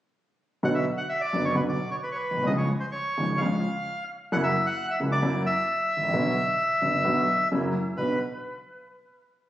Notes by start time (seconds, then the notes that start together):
0.63 B1 B2 D3 F#3 B3 F#4 F#5
0.74 E5
0.97 F#5
1.09 E5
1.21 D5
1.33 F#1 F#2 D3 F#3 B3 F#4
1.45 C#5
1.55 B1 B2 D3 F#3 B3 F#4 B4
1.69 D5
1.91 C#5
2.03 B4
2.12 B4 C#5
2.31 A#1
2.37 B1
2.43 C2 C#3 D#5
2.47 C#2 F3 G#3 F4
2.58 C#5
2.80 C5
2.92 C#5
3.17 G#1 G#2 C#3 F3 G#3 F4
3.38 C#2 C#3 F3 G#3 F4 F5
4.32 F#2 C#3 F#3 A#3 E4 F#5
4.43 E5
4.66 F#5
4.90 E5
5.00 C#2 C#3 F#3 A#3 E4
5.12 D5
5.22 F#2 C#3 F#3 A#3 E4
5.46 E5
5.97 G#1
6.03 A1
6.08 A#1
6.13 B1 B2 D3 F#3 B3 F#4
6.82 F#1 F#2 D3 F#3 B3 F#4
7.04 B1 B2 D3 F#3 B3 F#4
7.52 F#2 C#3 F#3 A#3 E4
7.97 B1 B3 D4 F#4 B4